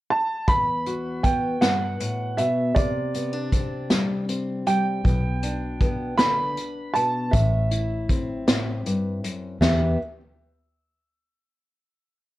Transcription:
0.10 upright piano A5
0.48 steel-string acoustic guitar E2, upright piano B5, kick, closed hi-hat
0.86 steel-string acoustic guitar F#4, closed hi-hat
1.23 steel-string acoustic guitar B3, upright piano G5, kick, closed hi-hat
1.61 steel-string acoustic guitar G2, upright piano F#5, snare, closed hi-hat
2.00 steel-string acoustic guitar A2, closed hi-hat
2.37 steel-string acoustic guitar B2, upright piano E5, closed hi-hat
2.75 steel-string acoustic guitar C3, upright piano D5, kick, closed hi-hat
3.14 steel-string acoustic guitar B3, closed hi-hat
3.33 steel-string acoustic guitar D4
3.52 steel-string acoustic guitar C4, kick, closed hi-hat
3.90 steel-string acoustic guitar G3, snare, closed hi-hat
4.29 steel-string acoustic guitar C4, closed hi-hat
4.66 steel-string acoustic guitar G3, upright piano G5, closed hi-hat
5.04 fingered electric bass B1, steel-string acoustic guitar B2, kick, closed hi-hat
5.43 steel-string acoustic guitar D4, closed hi-hat
5.81 steel-string acoustic guitar B3, kick, closed hi-hat
6.18 steel-string acoustic guitar D3, upright piano B5, snare, closed hi-hat
6.57 closed hi-hat
6.94 steel-string acoustic guitar B2, upright piano A5, closed hi-hat
7.31 fingered electric bass A1, steel-string acoustic guitar A2, upright piano E5, kick, closed hi-hat
7.71 steel-string acoustic guitar E4, closed hi-hat
8.09 steel-string acoustic guitar C4, kick, closed hi-hat
8.47 steel-string acoustic guitar A2, snare, closed hi-hat
8.86 steel-string acoustic guitar G2, closed hi-hat
9.23 steel-string acoustic guitar F#2, closed hi-hat
9.61 fingered electric bass E2, steel-string acoustic guitar E2 E3 B3 E4 G4, upright piano E5, snare, floor tom, splash

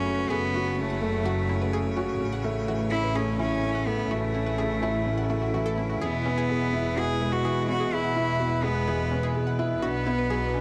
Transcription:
Already playing: double bass section F#1, string quartet C#3 A3 F#4 C#5, felt piano F#3 A3 C#4 F#4 A4, cello C#4
0.06 felt piano C#4, synth arpeggio sound E4
0.18 synth arpeggio sound B4
0.30 double bass section F#1, cello B3, synth arpeggio sound G#4, felt piano A4
0.54 synth arpeggio sound C#4, felt piano F#4
0.78 cello A3, felt piano C#4
0.90 synth arpeggio sound F#5
1.01 felt piano A3
1.25 felt piano F#3, synth arpeggio sound F#4
1.49 felt piano C#4, synth arpeggio sound E4
1.61 synth arpeggio sound B4
1.73 synth arpeggio sound G#4, felt piano A4
1.96 synth arpeggio sound C#4, felt piano F#4
2.20 double bass section A1, felt piano C#4
2.32 string quartet E4, synth arpeggio sound F#5
2.44 felt piano A3
2.68 felt piano E3, synth arpeggio sound F#4
2.91 felt piano C#4, cello E4, synth arpeggio sound E4
3.04 synth arpeggio sound B4
3.15 cello C#4, synth arpeggio sound G#4, felt piano A4
3.39 synth arpeggio sound C#4, cello C#4, felt piano E4
3.63 felt piano C#4
3.75 synth arpeggio sound F#5
3.87 felt piano A3, cello B3
4.10 double bass section A1, felt piano E3, cello A3, synth arpeggio sound F#4
4.35 felt piano C#4, synth arpeggio sound E4
4.46 synth arpeggio sound B4
4.58 synth arpeggio sound G#4, felt piano A4
4.82 synth arpeggio sound C#4, felt piano E4
5.06 felt piano C#4
5.18 synth arpeggio sound F#5
5.30 felt piano A3, synth arpeggio sound F#4
5.42 synth arpeggio sound F#4
5.54 felt piano E3, synth arpeggio sound F#4
5.66 synth arpeggio sound A4
5.78 felt piano C#4, synth arpeggio sound E4
5.90 synth arpeggio sound F#4
6.01 double bass section E1, string quartet B2, felt piano E3, cello B3, synth arpeggio sound G#4
6.18 string quartet G#3 B4
6.25 felt piano B3, synth arpeggio sound C#4
6.38 synth arpeggio sound G#4
6.49 felt piano G#4
6.61 synth arpeggio sound F#5
6.73 felt piano E4
6.97 felt piano B3, synth arpeggio sound F#4, cello G#4
7.21 felt piano G#3, synth arpeggio sound E4
7.33 cello F#4, synth arpeggio sound B4
7.45 felt piano E3, synth arpeggio sound G#4
7.68 felt piano B3, synth arpeggio sound C#4, cello F#4
7.80 synth arpeggio sound G#4
7.92 double bass section E1, cello E4, felt piano G#4
8.04 synth arpeggio sound F#5
8.16 felt piano E4
8.39 felt piano B3, synth arpeggio sound F#4
8.63 felt piano G#3, cello B3, synth arpeggio sound E4
8.75 synth arpeggio sound B4
8.88 felt piano E3, synth arpeggio sound G#4
9.11 felt piano B3, synth arpeggio sound C#4
9.23 synth arpeggio sound G#4
9.35 felt piano G#4
9.47 synth arpeggio sound F#5
9.59 felt piano E4
9.82 double bass section B1, cello B3, felt piano D4, synth arpeggio sound F#4
10.04 string quartet F#3, felt piano B3, synth arpeggio sound E4
10.18 synth arpeggio sound B4
10.30 felt piano F#3, synth arpeggio sound G#4
10.43 string quartet D4
10.54 synth arpeggio sound C#4, felt piano D4

